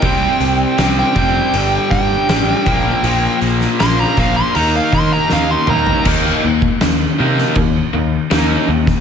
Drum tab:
CC |----------------|----------------|x---x---x---x---|
HH |o-o-o-o-o-o-o-o-|o-o-o-o-o-o-----|----------------|
SD |----o-------o---|---oo-o-----o---|----o--o----o--o|
T2 |----------------|--------------o-|----------------|
FT |----------------|---------------o|----------------|
BD |o-----o---o---o-|------o---o-----|o--o----o------o|